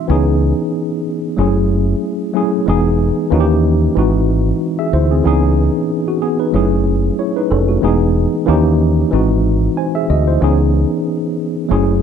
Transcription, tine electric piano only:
0.08 1.29 E3 medium
0.08 1.29 B3 medium
0.08 1.29 C#4 medium
0.08 1.30 D#4 medium
0.08 1.30 G#4 medium
1.37 2.27 F#3 medium
1.37 2.28 A3 medium
1.37 2.28 C#4 medium
1.37 2.29 E4 medium
1.37 2.29 G#4 medium
2.33 2.64 F#3 medium
2.33 2.64 A3 medium
2.33 2.64 C#4 medium
2.33 2.65 E4 medium
2.33 2.65 G#4 medium
2.66 3.29 E3 medium
2.66 3.31 G#3 medium
2.66 3.31 B3 medium
2.66 3.32 D#4 medium
2.66 3.32 G#4 medium
3.30 3.91 E3 medium
3.30 3.91 A#3 medium
3.30 3.92 C#4 medium
3.30 3.92 D#4 medium
3.30 3.39 F#4 medium
3.40 3.96 G4 loud
3.95 4.86 E3 medium
3.95 4.86 G#3 medium
3.95 4.28 C4 medium
3.95 4.28 D#4 medium
3.95 4.29 F#4 medium
4.79 4.92 G#4 medium
4.79 4.92 E5 medium
4.93 5.09 E4 medium
4.93 5.09 C5 medium
5.11 5.41 C4 medium
5.11 5.26 G#4 medium
5.24 6.45 E3 medium
5.24 5.56 B3 medium
5.24 5.57 C#4 medium
5.24 5.57 D#4 medium
5.24 5.58 G#4 medium
6.08 6.21 F#4 medium
6.22 6.38 B3 medium
6.22 6.38 G#4 medium
6.40 6.70 D#4 medium
6.40 6.70 B4 medium
6.52 7.43 F#3 medium
6.52 7.18 A3 medium
6.52 7.18 C#4 medium
6.52 7.18 E4 medium
6.52 7.19 G#4 medium
7.19 7.35 E4 soft
7.19 7.35 C#5 medium
7.36 7.50 D#4 medium
7.36 7.50 B4 medium
7.51 7.67 C#4 medium
7.51 7.67 A4 medium
7.68 7.99 A3 medium
7.68 7.98 F#4 medium
7.81 8.44 E3 medium
7.81 8.46 G#3 medium
7.81 8.47 B3 medium
7.81 8.47 D#4 medium
7.81 8.48 G#4 medium
8.46 9.06 E3 medium
8.46 9.07 A#3 medium
8.46 9.07 C#4 medium
8.46 9.08 D#4 medium
8.46 9.08 G4 loud
9.11 10.01 E3 medium
9.11 10.02 G#3 medium
9.11 10.02 C4 medium
9.11 9.77 D#4 medium
9.11 9.77 F#4 medium
9.77 9.93 C5 soft
9.77 9.93 G#5 medium
9.95 10.08 G#4 medium
9.95 10.08 E5 medium
10.10 10.26 F#4 medium
10.10 10.25 D#5 medium
10.28 10.57 E4 medium
10.28 10.57 C5 medium
10.40 11.61 E3 medium
10.40 11.61 B3 medium
10.40 11.62 C#4 medium
10.40 11.62 D#4 medium
10.40 11.63 G#4 medium
11.69 12.02 F#3 medium
11.69 12.02 A3 medium
11.69 12.02 C#4 medium
11.69 12.02 E4 medium
11.69 12.02 G#4 medium

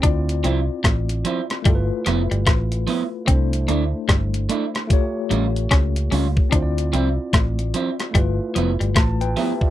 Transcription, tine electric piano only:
0.00 1.61 C4 medium
0.00 1.62 E4 medium
0.05 1.63 F4 medium
0.05 1.64 D5 medium
1.62 3.23 A3 medium
1.62 3.24 E4 medium
1.67 3.25 F4 medium
1.67 1.75 A4 medium
1.75 3.29 B4 medium
3.25 4.86 A3 medium
3.25 4.87 D4 medium
3.29 4.88 E4 medium
3.29 4.89 C5 medium
4.87 6.48 A3 medium
4.87 6.49 F4 medium
4.87 6.50 G4 medium
4.93 6.51 C#5 medium
6.50 8.10 C4 medium
6.50 8.11 E4 medium
6.54 8.12 F4 medium
6.54 6.62 C5 medium
6.62 8.16 D5 medium
8.11 9.70 A3 medium
8.11 8.93 E4 medium
8.15 8.94 F4 medium
8.15 8.95 B4 medium
8.95 9.19 A5 medium
9.21 9.36 B4 medium
9.21 9.36 G5 medium
9.37 9.61 G4 medium
9.37 9.60 E5 medium
9.61 9.70 F4 medium
9.61 9.70 D5 medium

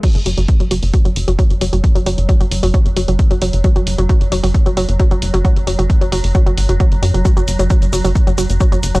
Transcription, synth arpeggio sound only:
0.03 0.08 F#3 medium
0.26 0.30 F#3 medium
0.38 0.42 F#3 medium
0.60 0.64 F#3 medium
0.71 0.75 F#3 medium
0.94 0.98 F#3 medium
1.05 1.09 F#3 medium
1.28 1.32 F#3 medium
1.39 1.43 F#3 medium
1.61 1.65 F#3 medium
1.73 1.77 F#3 medium
1.95 1.99 F#3 medium
2.06 2.11 F#3 medium
2.29 2.33 F#3 medium
2.41 2.45 F#3 medium
2.63 2.67 F#3 medium
2.74 2.78 F#3 medium
2.97 3.01 F#3 medium
3.08 3.12 F#3 medium
3.31 3.35 F#3 medium
3.42 3.46 F#3 medium
3.64 3.69 F#3 medium
3.76 3.80 F#3 medium
3.98 4.02 F#3 medium
4.09 4.14 F#3 medium
4.32 4.36 F#3 medium
4.43 4.47 F#3 medium
4.66 4.70 F#3 medium
4.77 4.81 F#3 medium
5.00 5.04 F#3 medium
5.11 5.15 F#3 medium
5.34 5.38 F#3 medium
5.45 5.49 F#3 medium
5.67 5.71 F#3 medium
5.79 5.83 F#3 medium
6.01 6.05 F#3 medium
6.12 6.17 F#3 medium
6.35 6.39 F#3 medium
6.46 6.50 F#3 medium
6.69 6.73 F#3 medium
6.80 6.84 F#3 medium
7.02 7.07 F#3 medium
7.14 7.18 F#3 medium
7.25 7.29 F#3 medium
7.37 7.41 F#3 medium
7.59 7.63 F#3 medium
7.70 7.74 F#3 medium
7.93 7.97 F#3 medium
8.04 8.08 F#3 medium
8.27 8.31 F#3 medium
8.38 8.42 F#3 medium
8.60 8.65 F#3 medium
8.72 8.76 F#3 medium
8.95 8.99 F#3 medium

